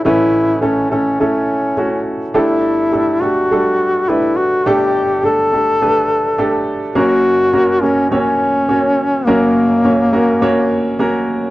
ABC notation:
X:1
M:4/4
L:1/8
Q:1/4=104
K:Glyd
V:1 name="Duduk"
E2 C C C3 z | E3 F3 E F | G2 A4- A z | F3 C C4 |
^A,6 z2 |]
V:2 name="Upright piano"
[A,CEB]2 [A,CEA] [A,CEA] [A,CEA]2 [A,CEF]2 | [A,DGA]2 [A,DGA] [A,DGA] [G,A,DA]2 [A,DGB]2 | [A,DGA]2 [A,DGA] [A,DGA] [A,DGB]2 [A,DGA]2 | [^A,CF^A]2 [A,CFA] [A,CFA] [A,CFc]2 [A,CFc]2 |
[^A,CF^A]2 [A,CFc] [A,CFA] [A,CFc]2 [A,CFA]2 |]
V:3 name="Upright piano" clef=bass
[A,,,A,,]8 | [G,,,G,,]8 | [G,,,G,,]8 | [F,,,F,,]8 |
[F,,,F,,]8 |]